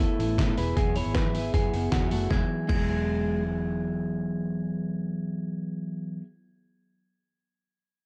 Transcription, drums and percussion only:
0.20 open hi-hat medium
0.38 kick loud
0.38 snare loud
0.38 open hi-hat medium
0.57 open hi-hat medium
0.77 kick loud
0.77 open hi-hat medium
0.95 open hi-hat medium
1.15 kick loud
1.15 snare loud
1.15 open hi-hat medium
1.35 open hi-hat medium
1.54 kick loud
1.54 open hi-hat medium
1.74 open hi-hat medium
1.92 kick loud
1.92 snare loud
1.92 open hi-hat medium
2.11 open hi-hat medium
2.31 kick loud
2.31 snare medium
2.69 kick loud
2.69 crash medium

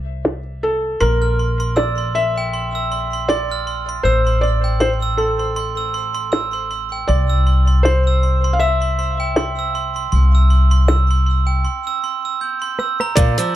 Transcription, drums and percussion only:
0.25 snare medium
1.77 snare medium
3.29 snare medium
4.81 snare medium
6.33 snare medium
7.85 snare medium
9.36 snare medium
10.88 snare medium
12.79 cross-stick medium
13.00 cross-stick medium
13.17 kick loud
13.17 closed hi-hat soft
13.17 shaker medium
13.39 shaker soft

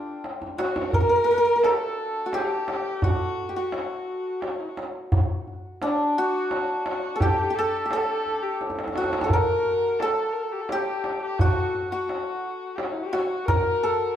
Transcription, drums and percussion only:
0.24 tombak tek soft
0.42 tombak ka medium
0.59 tombak tek medium
0.76 tombak ka medium
0.93 tombak dum medium
1.28 tombak ka soft
1.64 tombak tek medium
2.33 tombak tek medium
2.68 tombak tek medium
3.02 tombak dum medium
3.38 tombak ka soft
3.72 tombak tek medium
4.42 tombak tek medium
4.77 tombak tek medium
5.12 tombak dum medium
5.48 tombak ka soft
5.82 tombak tek medium
6.51 tombak tek medium
6.86 tombak tek medium
7.21 tombak dum medium
7.38 tombak ka soft
7.55 tombak ka soft
7.91 tombak tek medium
8.26 tombak ka soft
8.61 tombak tek soft
8.70 tombak ka medium
8.79 tombak tek medium
8.88 tombak ka medium
8.96 tombak tek medium
9.04 tombak ka medium
9.13 tombak tek medium
9.21 tombak ka medium
9.30 tombak dum medium
9.65 tombak ka soft
10.00 tombak tek medium
10.69 tombak tek medium
11.04 tombak tek medium
11.39 tombak dum medium
11.74 tombak ka soft
12.09 tombak tek medium
12.78 tombak tek medium
13.13 tombak tek medium
13.48 tombak dum medium
13.83 tombak ka soft

